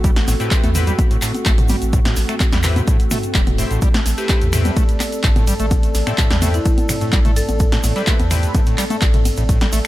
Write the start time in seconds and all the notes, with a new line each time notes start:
Already playing: A1 A3 C4 F#4 A4
0.04 G3, kick, closed hi-hat, shaker
0.16 snare, closed hi-hat, shaker
0.28 A1 A2, snare, open hi-hat, high conga, shaker
0.40 A2 C4 E4 G4 B4, closed hi-hat, shaker
0.51 kick, clap, closed hi-hat, shaker
0.64 E2 A3, closed hi-hat, high conga, shaker
0.75 C4 E4 G4 B4, mid tom, open hi-hat, shaker
0.87 G3, closed hi-hat, shaker
0.99 kick, closed hi-hat, high conga, shaker
1.11 A1 A2, closed hi-hat, shaker
1.22 A2, finger snap, clap, open hi-hat, shaker
1.34 closed hi-hat, high conga, shaker
1.45 A1 A3, kick, clap, closed hi-hat, shaker
1.58 closed hi-hat, mid tom, shaker
1.68 G3, open hi-hat, high conga, shaker
1.82 A1, closed hi-hat, shaker
1.93 A2, kick, closed hi-hat, shaker
2.05 A2, snare, closed hi-hat, high conga, shaker
2.16 A1, snare, open hi-hat, shaker
2.29 A3, finger snap, closed hi-hat, shaker
2.40 kick, clap, closed hi-hat, high conga, shaker
2.52 E2 G3, snare, closed hi-hat, shaker
2.63 C4 E4 G4 B4, finger snap, clap, mid tom, open hi-hat, shaker
2.76 A2, closed hi-hat, high conga, shaker
2.88 A2, kick, closed hi-hat, shaker
3.00 A1, closed hi-hat, shaker
3.11 A3, finger snap, mid tom, open hi-hat, high conga, shaker
3.23 closed hi-hat, shaker
3.34 E1 G3, kick, clap, closed hi-hat, shaker
3.46 closed hi-hat, mid tom, high conga, shaker
3.58 A2 C4 E4 G4 C5, open hi-hat, shaker
3.71 A1 A2, closed hi-hat, shaker
3.82 G3 A4, kick, closed hi-hat, shaker
3.94 A3, snare, closed hi-hat, high conga, shaker
4.06 A1, snare, open hi-hat, ride, shaker
4.17 C4 E4 G4 B4, closed hi-hat, shaker
4.29 kick, clap, closed hi-hat, high conga, shaker
4.39 E2 A2 D5, closed hi-hat, shaker
4.53 A2 C4 E4 G4 B4, finger snap, mid tom, open hi-hat, ride, shaker
4.65 G3, closed hi-hat, high conga, shaker
4.76 A3, kick, closed hi-hat, shaker
4.89 A1, closed hi-hat, shaker
5.00 finger snap, clap, open hi-hat, ride, high conga, shaker
5.12 closed hi-hat, shaker
5.23 A1 A2, kick, clap, closed hi-hat, shaker
5.36 A2, closed hi-hat, mid tom, high conga, shaker
5.47 G3, open hi-hat, ride, shaker
5.59 A1 A3, closed hi-hat, shaker
5.71 kick, closed hi-hat, high conga, shaker
5.83 closed hi-hat, shaker
5.95 A1, snare, open hi-hat, ride, shaker
6.07 A2 C4 E4 G4 A4, finger snap, closed hi-hat, high conga, shaker
6.18 A2, kick, clap, closed hi-hat, shaker
6.30 E2 G3, snare, closed hi-hat, shaker
6.42 A3 C4 E4 G4 B4, mid tom, open hi-hat, ride, high conga, shaker
6.54 E4, closed hi-hat, shaker
6.65 E4, kick, closed hi-hat, shaker
6.78 A1, closed hi-hat, high conga, shaker
6.89 A2, finger snap, mid tom, open hi-hat, ride, shaker
7.01 A2, closed hi-hat, shaker
7.12 A1 G3, kick, clap, closed hi-hat, high conga, shaker
7.25 A3, closed hi-hat, mid tom, shaker
7.36 A4, open hi-hat, ride, shaker
7.49 A1, closed hi-hat, high conga, shaker
7.60 kick, closed hi-hat, shaker
7.72 A2, snare, closed hi-hat, shaker
7.83 A1 A2, snare, open hi-hat, ride, high conga, shaker
7.96 G3 C4 E4 G4 B4, closed hi-hat, shaker
8.07 A3, kick, clap, closed hi-hat, shaker
8.19 E2, closed hi-hat, high conga, shaker
8.31 C4 E4 G4 B4, finger snap, mid tom, open hi-hat, ride, shaker
8.43 closed hi-hat, shaker
8.54 A2, kick, closed hi-hat, high conga, shaker
8.66 A1 A2, closed hi-hat, shaker
8.78 G3, finger snap, clap, open hi-hat, ride, shaker
8.90 A3, closed hi-hat, high conga, shaker
9.01 A1, kick, clap, closed hi-hat, shaker
9.13 closed hi-hat, mid tom, shaker
9.25 open hi-hat, ride, high conga, shaker
9.37 A1 A2, closed hi-hat, shaker
9.49 A2, kick, closed hi-hat, shaker
9.61 G3, snare, closed hi-hat, high conga, shaker
9.73 A1 A3, snare, open hi-hat, ride, shaker